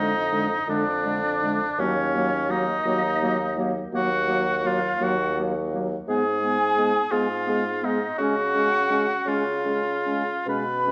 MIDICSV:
0, 0, Header, 1, 6, 480
1, 0, Start_track
1, 0, Tempo, 721154
1, 1188, Time_signature, 12, 3, 24, 8
1, 3578, Tempo, 703400
1, 5978, Tempo, 751880
1, 6458, Tempo, 811908
1, 7210, End_track
2, 0, Start_track
2, 0, Title_t, "Flute"
2, 0, Program_c, 0, 73
2, 0, Note_on_c, 0, 75, 85
2, 460, Note_on_c, 0, 74, 93
2, 470, Note_off_c, 0, 75, 0
2, 1180, Note_off_c, 0, 74, 0
2, 1184, Note_on_c, 0, 73, 87
2, 1658, Note_on_c, 0, 75, 90
2, 1668, Note_off_c, 0, 73, 0
2, 2441, Note_off_c, 0, 75, 0
2, 2625, Note_on_c, 0, 78, 86
2, 3097, Note_on_c, 0, 77, 80
2, 3107, Note_off_c, 0, 78, 0
2, 3346, Note_on_c, 0, 78, 79
2, 3356, Note_off_c, 0, 77, 0
2, 3583, Note_off_c, 0, 78, 0
2, 4063, Note_on_c, 0, 80, 98
2, 4778, Note_on_c, 0, 77, 85
2, 4788, Note_off_c, 0, 80, 0
2, 5262, Note_on_c, 0, 75, 66
2, 5272, Note_off_c, 0, 77, 0
2, 5499, Note_on_c, 0, 78, 85
2, 5509, Note_off_c, 0, 75, 0
2, 6214, Note_on_c, 0, 77, 70
2, 6223, Note_off_c, 0, 78, 0
2, 6948, Note_off_c, 0, 77, 0
2, 6950, Note_on_c, 0, 83, 88
2, 7210, Note_off_c, 0, 83, 0
2, 7210, End_track
3, 0, Start_track
3, 0, Title_t, "Oboe"
3, 0, Program_c, 1, 68
3, 0, Note_on_c, 1, 63, 106
3, 456, Note_off_c, 1, 63, 0
3, 463, Note_on_c, 1, 62, 106
3, 1194, Note_on_c, 1, 61, 97
3, 1204, Note_off_c, 1, 62, 0
3, 1667, Note_on_c, 1, 63, 100
3, 1677, Note_off_c, 1, 61, 0
3, 2445, Note_off_c, 1, 63, 0
3, 2631, Note_on_c, 1, 66, 101
3, 3106, Note_on_c, 1, 65, 97
3, 3116, Note_off_c, 1, 66, 0
3, 3350, Note_on_c, 1, 66, 93
3, 3360, Note_off_c, 1, 65, 0
3, 3585, Note_off_c, 1, 66, 0
3, 4068, Note_on_c, 1, 68, 102
3, 4765, Note_on_c, 1, 65, 106
3, 4775, Note_off_c, 1, 68, 0
3, 5265, Note_on_c, 1, 63, 81
3, 5275, Note_off_c, 1, 65, 0
3, 5488, Note_off_c, 1, 63, 0
3, 5492, Note_on_c, 1, 66, 116
3, 6226, Note_on_c, 1, 65, 86
3, 6236, Note_off_c, 1, 66, 0
3, 6954, Note_off_c, 1, 65, 0
3, 6957, Note_on_c, 1, 71, 95
3, 7210, Note_off_c, 1, 71, 0
3, 7210, End_track
4, 0, Start_track
4, 0, Title_t, "Clarinet"
4, 0, Program_c, 2, 71
4, 0, Note_on_c, 2, 56, 60
4, 91, Note_off_c, 2, 56, 0
4, 217, Note_on_c, 2, 56, 60
4, 324, Note_off_c, 2, 56, 0
4, 455, Note_on_c, 2, 56, 68
4, 561, Note_off_c, 2, 56, 0
4, 698, Note_on_c, 2, 56, 60
4, 804, Note_off_c, 2, 56, 0
4, 957, Note_on_c, 2, 56, 62
4, 1063, Note_off_c, 2, 56, 0
4, 1203, Note_on_c, 2, 58, 65
4, 1307, Note_off_c, 2, 58, 0
4, 1441, Note_on_c, 2, 58, 61
4, 1543, Note_off_c, 2, 58, 0
4, 1667, Note_on_c, 2, 58, 61
4, 1772, Note_off_c, 2, 58, 0
4, 1912, Note_on_c, 2, 58, 67
4, 2017, Note_off_c, 2, 58, 0
4, 2152, Note_on_c, 2, 58, 64
4, 2256, Note_off_c, 2, 58, 0
4, 2388, Note_on_c, 2, 58, 65
4, 2491, Note_off_c, 2, 58, 0
4, 2625, Note_on_c, 2, 58, 66
4, 2729, Note_off_c, 2, 58, 0
4, 2854, Note_on_c, 2, 58, 62
4, 2961, Note_off_c, 2, 58, 0
4, 3088, Note_on_c, 2, 58, 59
4, 3195, Note_off_c, 2, 58, 0
4, 3330, Note_on_c, 2, 58, 60
4, 3437, Note_off_c, 2, 58, 0
4, 3581, Note_on_c, 2, 58, 60
4, 3689, Note_off_c, 2, 58, 0
4, 3829, Note_on_c, 2, 58, 57
4, 3932, Note_off_c, 2, 58, 0
4, 4066, Note_on_c, 2, 59, 64
4, 4168, Note_off_c, 2, 59, 0
4, 4298, Note_on_c, 2, 59, 55
4, 4401, Note_off_c, 2, 59, 0
4, 4533, Note_on_c, 2, 59, 57
4, 4639, Note_off_c, 2, 59, 0
4, 4770, Note_on_c, 2, 59, 64
4, 4878, Note_off_c, 2, 59, 0
4, 5007, Note_on_c, 2, 59, 60
4, 5116, Note_off_c, 2, 59, 0
4, 5251, Note_on_c, 2, 59, 62
4, 5359, Note_off_c, 2, 59, 0
4, 5504, Note_on_c, 2, 61, 64
4, 5610, Note_off_c, 2, 61, 0
4, 5741, Note_on_c, 2, 61, 58
4, 5849, Note_off_c, 2, 61, 0
4, 5983, Note_on_c, 2, 61, 55
4, 6085, Note_off_c, 2, 61, 0
4, 6216, Note_on_c, 2, 61, 61
4, 6318, Note_off_c, 2, 61, 0
4, 6461, Note_on_c, 2, 61, 53
4, 6556, Note_off_c, 2, 61, 0
4, 6707, Note_on_c, 2, 61, 58
4, 6802, Note_off_c, 2, 61, 0
4, 6946, Note_on_c, 2, 61, 57
4, 7041, Note_off_c, 2, 61, 0
4, 7175, Note_on_c, 2, 61, 53
4, 7210, Note_off_c, 2, 61, 0
4, 7210, End_track
5, 0, Start_track
5, 0, Title_t, "French horn"
5, 0, Program_c, 3, 60
5, 0, Note_on_c, 3, 50, 59
5, 88, Note_off_c, 3, 50, 0
5, 214, Note_on_c, 3, 50, 64
5, 320, Note_off_c, 3, 50, 0
5, 455, Note_on_c, 3, 50, 72
5, 561, Note_off_c, 3, 50, 0
5, 697, Note_on_c, 3, 50, 60
5, 803, Note_off_c, 3, 50, 0
5, 944, Note_on_c, 3, 50, 61
5, 1050, Note_off_c, 3, 50, 0
5, 1193, Note_on_c, 3, 54, 67
5, 1299, Note_off_c, 3, 54, 0
5, 1424, Note_on_c, 3, 54, 59
5, 1530, Note_off_c, 3, 54, 0
5, 1656, Note_on_c, 3, 54, 63
5, 1763, Note_off_c, 3, 54, 0
5, 1899, Note_on_c, 3, 54, 72
5, 2005, Note_off_c, 3, 54, 0
5, 2142, Note_on_c, 3, 54, 62
5, 2249, Note_off_c, 3, 54, 0
5, 2377, Note_on_c, 3, 54, 57
5, 2483, Note_off_c, 3, 54, 0
5, 2610, Note_on_c, 3, 54, 63
5, 2716, Note_off_c, 3, 54, 0
5, 2844, Note_on_c, 3, 54, 60
5, 2951, Note_off_c, 3, 54, 0
5, 3086, Note_on_c, 3, 54, 63
5, 3193, Note_off_c, 3, 54, 0
5, 3330, Note_on_c, 3, 54, 65
5, 3437, Note_off_c, 3, 54, 0
5, 3575, Note_on_c, 3, 54, 55
5, 3684, Note_off_c, 3, 54, 0
5, 3821, Note_on_c, 3, 54, 62
5, 3926, Note_off_c, 3, 54, 0
5, 4056, Note_on_c, 3, 56, 63
5, 4160, Note_off_c, 3, 56, 0
5, 4290, Note_on_c, 3, 56, 55
5, 4395, Note_off_c, 3, 56, 0
5, 4524, Note_on_c, 3, 56, 58
5, 4632, Note_off_c, 3, 56, 0
5, 4770, Note_on_c, 3, 56, 67
5, 4878, Note_off_c, 3, 56, 0
5, 5018, Note_on_c, 3, 56, 55
5, 5125, Note_off_c, 3, 56, 0
5, 5259, Note_on_c, 3, 56, 55
5, 5366, Note_off_c, 3, 56, 0
5, 5506, Note_on_c, 3, 56, 61
5, 5612, Note_off_c, 3, 56, 0
5, 5743, Note_on_c, 3, 56, 55
5, 5850, Note_off_c, 3, 56, 0
5, 5982, Note_on_c, 3, 56, 56
5, 6085, Note_off_c, 3, 56, 0
5, 6221, Note_on_c, 3, 56, 62
5, 6323, Note_off_c, 3, 56, 0
5, 6464, Note_on_c, 3, 56, 54
5, 6559, Note_off_c, 3, 56, 0
5, 6709, Note_on_c, 3, 56, 57
5, 6803, Note_off_c, 3, 56, 0
5, 6950, Note_on_c, 3, 56, 59
5, 7045, Note_off_c, 3, 56, 0
5, 7181, Note_on_c, 3, 56, 47
5, 7210, Note_off_c, 3, 56, 0
5, 7210, End_track
6, 0, Start_track
6, 0, Title_t, "Bassoon"
6, 0, Program_c, 4, 70
6, 0, Note_on_c, 4, 41, 73
6, 371, Note_off_c, 4, 41, 0
6, 454, Note_on_c, 4, 41, 78
6, 1102, Note_off_c, 4, 41, 0
6, 1189, Note_on_c, 4, 39, 88
6, 1814, Note_off_c, 4, 39, 0
6, 1898, Note_on_c, 4, 39, 77
6, 2530, Note_off_c, 4, 39, 0
6, 2617, Note_on_c, 4, 39, 72
6, 3248, Note_off_c, 4, 39, 0
6, 3336, Note_on_c, 4, 39, 79
6, 3973, Note_off_c, 4, 39, 0
6, 4060, Note_on_c, 4, 44, 82
6, 4680, Note_off_c, 4, 44, 0
6, 4762, Note_on_c, 4, 44, 70
6, 5405, Note_off_c, 4, 44, 0
6, 5491, Note_on_c, 4, 49, 70
6, 6127, Note_off_c, 4, 49, 0
6, 6208, Note_on_c, 4, 49, 67
6, 6860, Note_off_c, 4, 49, 0
6, 6941, Note_on_c, 4, 47, 80
6, 7210, Note_off_c, 4, 47, 0
6, 7210, End_track
0, 0, End_of_file